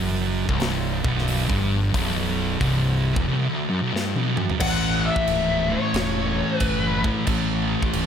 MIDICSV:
0, 0, Header, 1, 6, 480
1, 0, Start_track
1, 0, Tempo, 666667
1, 1400, Time_signature, 4, 2, 24, 8
1, 5804, End_track
2, 0, Start_track
2, 0, Title_t, "Lead electric guitar"
2, 0, Program_c, 0, 29
2, 3319, Note_on_c, 0, 78, 111
2, 3640, Note_off_c, 0, 78, 0
2, 3642, Note_on_c, 0, 76, 102
2, 4115, Note_on_c, 0, 73, 84
2, 4132, Note_off_c, 0, 76, 0
2, 4741, Note_off_c, 0, 73, 0
2, 4741, Note_on_c, 0, 71, 84
2, 5045, Note_off_c, 0, 71, 0
2, 5804, End_track
3, 0, Start_track
3, 0, Title_t, "Distorted electric guitar"
3, 0, Program_c, 1, 30
3, 4099, Note_on_c, 1, 57, 97
3, 4108, Note_on_c, 1, 52, 77
3, 4118, Note_on_c, 1, 45, 80
3, 5214, Note_off_c, 1, 45, 0
3, 5221, Note_off_c, 1, 57, 0
3, 5222, Note_off_c, 1, 52, 0
3, 5804, End_track
4, 0, Start_track
4, 0, Title_t, "Distorted electric guitar"
4, 0, Program_c, 2, 30
4, 0, Note_on_c, 2, 42, 113
4, 346, Note_off_c, 2, 42, 0
4, 349, Note_on_c, 2, 36, 97
4, 741, Note_off_c, 2, 36, 0
4, 745, Note_on_c, 2, 35, 103
4, 1063, Note_off_c, 2, 35, 0
4, 1069, Note_on_c, 2, 43, 94
4, 1389, Note_off_c, 2, 43, 0
4, 1392, Note_on_c, 2, 35, 113
4, 1867, Note_off_c, 2, 35, 0
4, 1870, Note_on_c, 2, 36, 108
4, 2267, Note_off_c, 2, 36, 0
4, 2275, Note_on_c, 2, 40, 87
4, 2353, Note_off_c, 2, 40, 0
4, 2360, Note_on_c, 2, 36, 111
4, 2508, Note_off_c, 2, 36, 0
4, 2512, Note_on_c, 2, 38, 99
4, 2660, Note_off_c, 2, 38, 0
4, 2663, Note_on_c, 2, 42, 105
4, 2746, Note_off_c, 2, 42, 0
4, 2749, Note_on_c, 2, 35, 106
4, 2828, Note_off_c, 2, 35, 0
4, 2830, Note_on_c, 2, 43, 91
4, 2983, Note_off_c, 2, 43, 0
4, 2998, Note_on_c, 2, 35, 100
4, 3145, Note_off_c, 2, 35, 0
4, 3152, Note_on_c, 2, 42, 104
4, 3310, Note_off_c, 2, 42, 0
4, 3313, Note_on_c, 2, 45, 92
4, 3323, Note_on_c, 2, 52, 95
4, 3332, Note_on_c, 2, 57, 110
4, 5051, Note_off_c, 2, 45, 0
4, 5056, Note_off_c, 2, 52, 0
4, 5061, Note_off_c, 2, 57, 0
4, 5069, Note_on_c, 2, 57, 103
4, 5081, Note_on_c, 2, 52, 80
4, 5089, Note_on_c, 2, 45, 75
4, 5226, Note_off_c, 2, 45, 0
4, 5226, Note_off_c, 2, 57, 0
4, 5232, Note_off_c, 2, 52, 0
4, 5234, Note_on_c, 2, 45, 94
4, 5242, Note_on_c, 2, 52, 88
4, 5252, Note_on_c, 2, 57, 111
4, 5804, Note_off_c, 2, 45, 0
4, 5804, Note_off_c, 2, 52, 0
4, 5804, Note_off_c, 2, 57, 0
4, 5804, End_track
5, 0, Start_track
5, 0, Title_t, "Fingered electric bass"
5, 0, Program_c, 3, 33
5, 0, Note_on_c, 3, 30, 93
5, 327, Note_off_c, 3, 30, 0
5, 350, Note_on_c, 3, 24, 91
5, 723, Note_off_c, 3, 24, 0
5, 753, Note_on_c, 3, 23, 91
5, 1054, Note_off_c, 3, 23, 0
5, 1076, Note_on_c, 3, 31, 101
5, 1377, Note_off_c, 3, 31, 0
5, 1395, Note_on_c, 3, 23, 87
5, 1849, Note_off_c, 3, 23, 0
5, 1879, Note_on_c, 3, 24, 88
5, 2249, Note_off_c, 3, 24, 0
5, 2279, Note_on_c, 3, 28, 92
5, 2355, Note_off_c, 3, 28, 0
5, 3318, Note_on_c, 3, 33, 96
5, 3653, Note_off_c, 3, 33, 0
5, 3795, Note_on_c, 3, 25, 87
5, 4132, Note_off_c, 3, 25, 0
5, 4272, Note_on_c, 3, 28, 95
5, 4610, Note_off_c, 3, 28, 0
5, 4758, Note_on_c, 3, 30, 93
5, 5093, Note_off_c, 3, 30, 0
5, 5240, Note_on_c, 3, 33, 92
5, 5575, Note_off_c, 3, 33, 0
5, 5711, Note_on_c, 3, 25, 86
5, 5804, Note_off_c, 3, 25, 0
5, 5804, End_track
6, 0, Start_track
6, 0, Title_t, "Drums"
6, 352, Note_on_c, 9, 36, 100
6, 424, Note_off_c, 9, 36, 0
6, 431, Note_on_c, 9, 46, 61
6, 446, Note_on_c, 9, 38, 112
6, 503, Note_off_c, 9, 46, 0
6, 518, Note_off_c, 9, 38, 0
6, 752, Note_on_c, 9, 36, 112
6, 824, Note_off_c, 9, 36, 0
6, 852, Note_on_c, 9, 38, 35
6, 919, Note_on_c, 9, 46, 60
6, 924, Note_off_c, 9, 38, 0
6, 991, Note_off_c, 9, 46, 0
6, 1077, Note_on_c, 9, 36, 100
6, 1149, Note_off_c, 9, 36, 0
6, 1399, Note_on_c, 9, 36, 107
6, 1400, Note_on_c, 9, 46, 65
6, 1471, Note_off_c, 9, 36, 0
6, 1472, Note_off_c, 9, 46, 0
6, 1878, Note_on_c, 9, 46, 65
6, 1879, Note_on_c, 9, 36, 110
6, 1950, Note_off_c, 9, 46, 0
6, 1951, Note_off_c, 9, 36, 0
6, 2278, Note_on_c, 9, 36, 110
6, 2350, Note_off_c, 9, 36, 0
6, 2852, Note_on_c, 9, 38, 66
6, 2924, Note_off_c, 9, 38, 0
6, 2997, Note_on_c, 9, 48, 64
6, 3069, Note_off_c, 9, 48, 0
6, 3147, Note_on_c, 9, 45, 94
6, 3219, Note_off_c, 9, 45, 0
6, 3237, Note_on_c, 9, 43, 91
6, 3309, Note_off_c, 9, 43, 0
6, 3314, Note_on_c, 9, 49, 115
6, 3314, Note_on_c, 9, 57, 60
6, 3319, Note_on_c, 9, 36, 112
6, 3386, Note_off_c, 9, 49, 0
6, 3386, Note_off_c, 9, 57, 0
6, 3391, Note_off_c, 9, 36, 0
6, 3716, Note_on_c, 9, 36, 97
6, 3788, Note_off_c, 9, 36, 0
6, 3798, Note_on_c, 9, 57, 60
6, 3870, Note_off_c, 9, 57, 0
6, 4277, Note_on_c, 9, 57, 62
6, 4292, Note_on_c, 9, 38, 118
6, 4349, Note_off_c, 9, 57, 0
6, 4364, Note_off_c, 9, 38, 0
6, 4753, Note_on_c, 9, 57, 65
6, 4757, Note_on_c, 9, 36, 92
6, 4825, Note_off_c, 9, 57, 0
6, 4829, Note_off_c, 9, 36, 0
6, 5071, Note_on_c, 9, 36, 97
6, 5143, Note_off_c, 9, 36, 0
6, 5233, Note_on_c, 9, 57, 69
6, 5237, Note_on_c, 9, 36, 104
6, 5305, Note_off_c, 9, 57, 0
6, 5309, Note_off_c, 9, 36, 0
6, 5634, Note_on_c, 9, 36, 88
6, 5706, Note_off_c, 9, 36, 0
6, 5713, Note_on_c, 9, 57, 64
6, 5785, Note_off_c, 9, 57, 0
6, 5804, End_track
0, 0, End_of_file